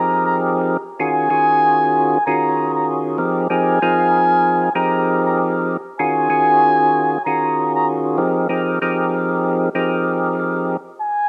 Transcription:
Already playing: F3 C4 D#4 G4 G#4 A#4 A#5
0.26 A#5
0.99 D#3 C#4 F4 F#4 G#4 G#5
1.30 D#3 C#4 F4 F#4 G#4
2.25 D#3 C#4 F4 F#4 G#4 A#5
2.75 A#5
3.18 F3 C4 D#4 G4 G#4 A#4
3.50 F3 C4 D#4 G4 G#4 A#4 G#5
3.82 F3 C4 D#4 F4 G#4 A#4
4.75 F3 C4 D#4 G4 G#4 A#4 A#5
5.25 A#5
5.99 D#3 C#4 F4 F#4 G#4 G#5
6.30 D#3 C#4 F4 F#4 G#4
7.25 D#3 C#4 F4 F#4 G#4 A#5
7.75 A#5
8.18 F3 C4 D#4 G4 G#4 A#4
8.49 F3 C4 D#4 G4 G#4 A#4
8.82 F3 C4 D#4 G4 G#4 A#4
9.75 F3 C4 D#4 G4 G#4 A#4
11.01 G#5

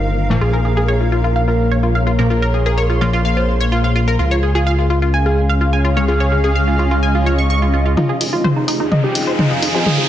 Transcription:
Already playing: G1 D#4 G4 A#4 C5 F5
0.30 A#2 F3 A#3
0.41 A#1 A#3 F4 G#4 C#5
0.53 A#4
0.65 G#4
0.77 G#4
0.88 C#5
1.01 F4
1.12 F4
1.24 F4
1.36 F5 C6
1.48 F4 A#4
1.71 C#5
1.83 F4
1.95 F5
2.07 F4
2.19 A#2 F3 A#3 A#4
2.30 F4 A#4
2.42 A#4
2.54 G#4
2.66 G#4 A#4
2.78 C#5
2.90 F4
3.01 A#2 F3 A#3 F4
3.13 F4
3.25 F5
3.37 F4 C5
3.60 C#5
3.72 F4
3.84 F5
3.96 F4
4.08 A#4
4.19 C#2 C#4 F4 F5
4.31 G#4 C#5
4.43 G#4
4.55 F4 G#4
4.67 F5
4.79 F4
4.90 F4
5.02 F4
5.14 G#5
5.26 F4 G#4
5.48 D#5 F5
5.61 F4
5.73 G#5
5.85 F4
5.97 C#3 G#3 C#4 C#5
6.08 F4 G#4
6.20 C#5
6.32 G#4
6.44 G#4
6.55 F5
6.68 F4
6.79 F4
6.91 F4
7.03 G#5
7.15 F4
7.26 C#5
7.38 C#6
7.50 C#6
7.62 F4
7.74 F4
7.86 F4
7.97 D#4 F4 G#4, mid tom, riser
8.09 G#4 C5
8.21 F1 F4, open hi-hat
8.33 F1 F4
8.44 C5, mid tom
8.56 F1 D#4
8.68 D#4, open hi-hat
8.80 F2 D#4
8.92 D#5, mid tom
9.04 D#4 G4
9.10 G5
9.15 F1, open hi-hat
9.27 F1 C5
9.39 D#4, mid tom
9.51 F2 D#5
9.62 D#4, open hi-hat
9.75 G#1 F3 C4 F4 G#4
9.86 D#4 G#4, mid tom
9.98 G#4

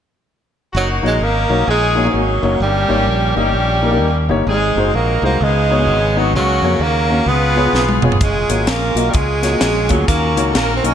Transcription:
0.73 F#1 F#3 A#3 D#4 F#4
1.02 A#1 A#3 D#4 F#4 C#5
1.07 G#3
1.20 G#1 A#3 C#4 D#4 A#4
1.49 B1 A#3 D#4 F#4 C#5
1.68 A#1 G#3 C#4 D#4 G#4
1.95 A#3 D#4 F#4 C#5
2.04 A#3 D#4 F#4 C#5
2.09 F3
2.14 G#1 F#3 A#3 D#4 F#4
2.42 F#1 A#3 D#4 F#4 C#5
2.60 G1 G2 G3 A#3 C#4 G4
2.88 G#1 A#3 D#4 G4 C#5
3.07 A#1
3.36 G1 G3 A#3 C#4 D#4 G4 D#5
3.53 A#1
3.82 A#3 D#4 G4 A#4
3.90 A#3 D#4 G4 A#4
4.01 D#2
4.29 G1 A#3 D#4 G4 C#5
4.47 G#1 G#2 G#3 C4 D#4 G#4
4.76 F#1 G#3 D#4 F#4 C5
4.94 A#1 A#3 D#4 F#4 A#4
5.22 C2 G#3 A#3 D#4 F#4 C5
5.41 C#2 C#3 G#3 B3 D#4 G#4
5.70 B3 D#4 F#4 C#5
5.78 B3 D#4 F#4 C#5
5.87 G#1
6.16 F#3 B3 D#4 F#4 C#5
6.33 C#2 C#3 F#3 A#3 C#4 F#4
6.62 F2 A#3 C#4 F#4 C#5
6.80 D#2 A#3 C#4 F#4 A#4
7.09 A#3 C#4 F#4 C#5
7.26 C#2 C#3 B3 F4 G#4 B4
7.55 B3 F4 G#4 C#5
7.65 B3 F4 G#4 B4
7.73 B1, snare
7.89 high tom
8.02 F1 B3 F4 G#4 C#5, mid tom
8.12 floor tom
8.20 F#1 G#3 C#4 F4 G#4, kick, closed hi-hat
8.49 G#1 A#3 F4 F#4 C#5, closed hi-hat
8.66 A#1 A#3 C#4 F4 A#4, snare, closed hi-hat
8.95 B1 A#3 F4 F#4 D#5, closed hi-hat
9.10 C#2 G3 C#4 F4 G#4, closed hi-hat
9.15 G#3, kick
9.42 A#3 F4 F#4 C#5, snare, closed hi-hat
9.52 A#3 F4 F#4 D#5
9.61 A#1, snare, closed hi-hat
9.87 D2 F#3 A#3 F4 F#4 G#4, kick, closed hi-hat
10.05 D#2 D#3 A#3 C#4 F#4 A#4, kick, closed hi-hat
10.36 C#2 A#3 D#4 F#4 C#5, closed hi-hat
10.51 A#1 C#4 F#4 A#4, closed hi-hat
10.55 A#3, snare
10.76 C4
10.83 B1 A#3 C#4 D#4 F#4 D#5, closed hi-hat

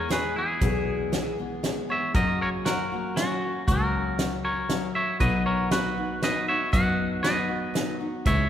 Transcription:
Already playing: E2 C#5
0.09 E3 G#3 B3 G#4 B4, snare, closed hi-hat
0.36 E3 G#3 B3 E4 G#4
0.61 B1 E2 B2 E3 G#3 B3 G#4, kick, closed hi-hat
1.12 E3 G#3 B3 G#4, snare, closed hi-hat
1.38 E3 G#3 B3 G#4
1.63 E3 G#3 B3 G#4, snare, closed hi-hat
1.89 E3 G#3 B3 G#4 C#5 E5
2.14 F#2 C#3 F#3 A#3 C#4 F#4 A#4 D#5, kick, closed hi-hat
2.41 A#4 C#5
2.65 F#3 A#3 C#4 F#4 A#4, snare, closed hi-hat
2.92 F#3 A#3 C#4 F#4
3.16 F#3 A#3 C#4 F#4, snare, closed hi-hat
3.67 C#2 F#2 C#3 F#3 A#3 C#4 F#4 A#4, kick, closed hi-hat
4.18 F#3 A#3 C#4 F#4, snare, closed hi-hat
4.45 A#4 C#5
4.69 F#3 A#3 C#4 F#4, snare, closed hi-hat
4.95 C#5 E5
5.20 B1 B2 F#3 B3 D#4 F#4 B4 D#5, kick, closed hi-hat
5.46 A#4 C#5
5.71 F#3 B3 D#4 F#4 B4, snare, closed hi-hat
5.97 B3 D#4 F#4
6.22 F#3 B3 D#4 F#4 B4 D#5, snare, closed hi-hat
6.47 B3 D#4 F#4 C#5 E5
6.72 F#2 B2 F#3 B3 D#4 F#4 D#5 F#5, kick, closed hi-hat
7.23 F#3 B3 D#4 F#4 B4 D#5, snare, closed hi-hat
7.49 B3 D#4 F#4
7.74 F#3 B3 D#4 F#4, snare, closed hi-hat
7.99 B3 D#4 F#4
8.26 C#2 C#3 E3 G#3 C#4 E4 C#5 E5, kick, closed hi-hat

